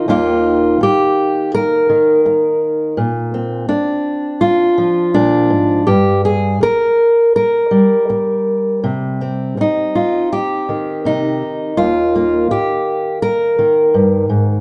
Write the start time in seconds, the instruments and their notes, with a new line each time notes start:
0.08 steel-string acoustic guitar D#2 D#3 A#3 D#4 F4
0.81 steel-string acoustic guitar G4, muted steel-string acoustic guitar stroke
1.54 steel-string acoustic guitar A#4
1.89 steel-string acoustic guitar D#3
2.25 muted steel-string acoustic guitar stroke
2.97 steel-string acoustic guitar A#2
3.34 steel-string acoustic guitar C4
3.69 steel-string acoustic guitar D4, muted steel-string acoustic guitar stroke
4.41 steel-string acoustic guitar F4
4.78 steel-string acoustic guitar F3
5.14 steel-string acoustic guitar A#2 D4
5.50 steel-string acoustic guitar G#2
5.87 steel-string acoustic guitar G2 G4
6.25 steel-string acoustic guitar G#4
6.61 steel-string acoustic guitar A#4, muted steel-string acoustic guitar stroke
7.36 steel-string acoustic guitar A#4
7.71 steel-string acoustic guitar G3
8.09 muted steel-string acoustic guitar stroke
8.84 steel-string acoustic guitar C3
9.21 steel-string acoustic guitar C4
9.57 steel-string acoustic guitar D#4, muted steel-string acoustic guitar stroke
9.95 steel-string acoustic guitar F4
10.33 steel-string acoustic guitar G4
10.69 steel-string acoustic guitar D#3
11.05 steel-string acoustic guitar C3 D#4
11.77 steel-string acoustic guitar D#2 F4
12.16 steel-string acoustic guitar A#3
12.51 steel-string acoustic guitar G4, muted steel-string acoustic guitar stroke
13.22 steel-string acoustic guitar A#4
13.59 steel-string acoustic guitar D#3
13.94 steel-string acoustic guitar G2
14.29 steel-string acoustic guitar G#2